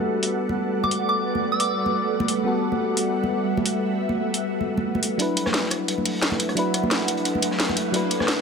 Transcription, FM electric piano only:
0.00 2.42 G3 medium
0.00 2.43 B3 medium
0.00 2.44 F#4 medium
0.00 2.45 A4 medium
2.43 5.17 G3 medium
2.43 5.17 B3 medium
2.43 5.18 F#4 medium
2.48 5.19 A4 medium
5.18 6.20 F#3 medium
5.18 6.20 D4 medium
5.18 6.21 E4 medium
5.22 6.22 B4 medium
6.55 7.57 F#3 medium
6.55 7.58 D4 medium
6.55 7.58 E4 medium
6.59 7.59 B4 loud
7.92 8.41 F#3 medium
7.92 8.41 D4 medium
7.92 8.41 E4 medium
7.96 8.41 B4 medium

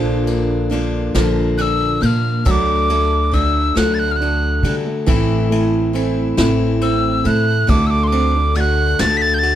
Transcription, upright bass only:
0.00 1.11 A#1 medium
1.15 1.98 A#1 medium
2.02 2.43 A#2 medium
2.46 3.73 D2 medium
3.76 4.60 D2 medium
4.63 5.05 D3 medium
5.08 6.34 A1 medium
6.37 7.21 A1 medium
7.25 7.67 A2 medium
7.68 8.95 D2 medium
9.00 9.55 D2 medium

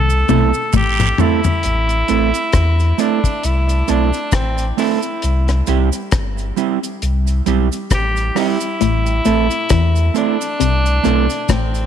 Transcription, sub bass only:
0.00 0.24 C2 loud
0.29 0.52 B1 medium
0.74 1.13 A1 loud
1.65 2.03 A1 loud
2.10 2.32 A1 medium
2.54 2.93 E2 loud
3.44 3.83 C2 medium
3.89 4.11 B1 medium
4.33 4.72 A1 medium
5.24 5.62 C2 loud
5.68 5.90 C2 loud
6.13 6.52 G1 medium
7.02 7.41 C2 medium
7.47 7.69 B1 medium
7.91 8.30 A1 medium
8.81 9.20 A1 loud
9.26 9.49 A1 medium
9.71 10.10 E2 loud
10.61 10.99 C2 medium
11.05 11.28 B1 medium
11.50 11.86 A1 medium

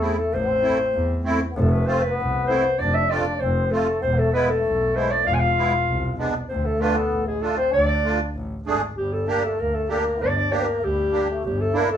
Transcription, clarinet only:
0.03 0.20 G#4 medium
0.18 0.35 A4 medium
0.34 1.26 C5 medium
1.57 1.71 A4 medium
1.70 1.88 B4 medium
1.86 2.03 C5 medium
2.02 2.46 B4 medium
2.47 2.80 C5 medium
2.79 2.96 D5 medium
2.94 3.12 E5 medium
3.10 3.41 D5 medium
3.40 3.73 C5 medium
3.71 4.01 A4 medium
4.02 4.20 C5 medium
4.18 4.33 A4 medium
4.34 4.51 B4 medium
4.50 4.97 A4 medium
4.96 5.12 C5 medium
5.11 5.26 D5 medium
5.27 5.36 F5 medium
5.34 5.41 G#5 medium
5.39 6.19 F5 medium
6.49 6.67 C5 medium
6.65 6.83 A4 medium
6.81 6.94 B4 medium
6.95 7.24 A4 medium
7.27 7.43 G#4 medium
7.42 7.57 A4 medium
7.58 7.72 C5 medium
7.73 8.31 D5 medium
8.97 9.14 G4 medium
9.13 9.30 A4 medium
9.28 9.45 A#4 medium
9.44 9.61 A4 medium
9.60 9.76 A#4 medium
9.75 9.89 A4 medium
9.90 10.24 A#4 medium
10.22 10.37 D5 medium
10.38 10.54 D5 medium
10.53 10.86 A#4 medium
10.84 11.44 G4 medium
11.45 11.63 G4 medium
11.61 11.79 A4 medium
11.78 11.90 A#4 medium
11.91 11.97 A4 medium

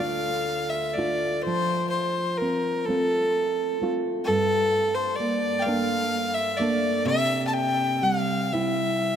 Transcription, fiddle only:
0.00 0.71 F5 medium
0.69 0.89 E5 medium
0.89 0.95 E5 medium
0.94 1.43 D5 medium
1.42 1.89 C5 medium
1.89 2.39 C5 medium
2.37 2.87 A#4 medium
2.86 3.91 A4 medium
4.24 4.96 A4 loud
4.94 5.17 C5 medium
5.15 5.60 D5 medium
5.59 6.35 F5 loud
5.59 5.63 G5 medium
6.34 6.58 E5 medium
6.57 7.05 D5 medium
7.07 7.44 E5 loud
7.47 7.54 A5 medium
7.53 8.05 G5 medium
8.03 8.54 F5 medium
8.53 9.16 E5 medium

